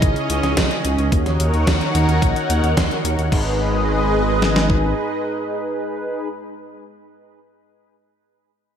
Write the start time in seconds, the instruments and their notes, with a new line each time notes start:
Already playing: analog polysynth C#3 D#4 E4 D#5, analog synth pad C#4 G#4 D#5
0.02 detuned saw bass G#1, kick, closed hi-hat
0.16 closed hi-hat
0.30 detuned saw bass C#2, closed hi-hat
0.43 detuned saw bass C#2, snare, closed hi-hat
0.57 detuned saw bass C#2, kick, snare, closed hi-hat
0.71 closed hi-hat
0.85 detuned saw bass C#2, closed hi-hat
0.98 detuned saw bass C#2, closed hi-hat
1.12 detuned saw bass D#2, analog polysynth D#3 D#4 F#4 C#5, analog synth pad D#4 A#4 C#5 F#5, kick, closed hi-hat
1.26 detuned saw bass D#2, snare, closed hi-hat
1.40 detuned saw bass D#2, closed hi-hat
1.53 detuned saw bass D#2, closed hi-hat
1.67 detuned saw bass D#2, kick, snare, closed hi-hat
1.81 closed hi-hat
1.94 detuned saw bass D#2, analog polysynth D#3 D#4 F#4 C#5, closed hi-hat
2.08 detuned saw bass D#2, closed hi-hat
2.22 detuned saw bass A#1, kick, closed hi-hat
2.36 closed hi-hat
2.49 detuned saw bass D#2, closed hi-hat
2.63 detuned saw bass D#2, closed hi-hat
2.77 detuned saw bass D#2, analog polysynth D#3 D#4 F#4 C#5, kick, snare, closed hi-hat
2.91 analog polysynth D#3 D#4 F#4 C#5, closed hi-hat
3.04 detuned saw bass D#2, closed hi-hat
3.18 detuned saw bass D#2, closed hi-hat
3.32 detuned saw bass G#1, analog synth pad G#3 G#4 B4 D#5, analog polysynth D#4 G#4 B4, kick, crash
4.42 snare
4.56 snare
4.70 kick